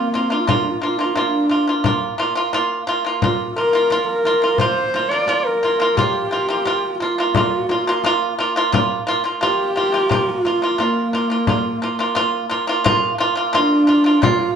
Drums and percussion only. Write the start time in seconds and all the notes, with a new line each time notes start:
0.15 frame drum
0.48 frame drum
0.83 frame drum
1.16 frame drum
1.50 frame drum
1.84 frame drum
2.19 frame drum
2.53 frame drum
2.87 frame drum
3.22 frame drum
3.56 frame drum
3.91 frame drum
4.25 frame drum
4.58 frame drum
4.94 frame drum
5.27 frame drum
5.64 frame drum
5.98 frame drum
6.32 frame drum
6.66 frame drum
7.01 frame drum
7.35 frame drum
7.69 frame drum
8.04 frame drum
8.38 frame drum
8.73 frame drum
9.08 frame drum
9.43 frame drum
9.77 frame drum
10.11 frame drum
10.45 frame drum
10.79 frame drum
11.13 frame drum
11.47 frame drum
12.16 frame drum
12.51 frame drum
12.86 frame drum
13.20 frame drum
13.54 frame drum
13.89 frame drum
14.23 frame drum